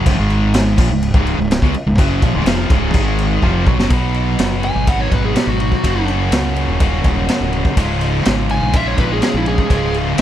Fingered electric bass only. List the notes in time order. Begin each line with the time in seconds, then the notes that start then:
0.06 C#1
0.18 G#1
0.78 A#1
0.90 C#1
1.14 C#1
1.38 C#1
1.62 C#2
1.75 muted fingered electric bass stroke
1.86 C#1
1.99 F#1
2.22 A#1
2.34 C#1
2.45 F1
2.70 C#1
2.94 G#1
3.42 F1
3.67 B1
3.78 F#1
3.90 B1
4.39 F#1
4.75 G#1
5.12 G#1
5.47 G#1
5.84 F#1
6.32 C#2
6.68 D#1
7.05 D#1
7.41 D1
7.77 C#1
8.26 G#1
8.62 A#1
8.98 A#1
9.34 A#1
9.70 C#1
10.18 G#1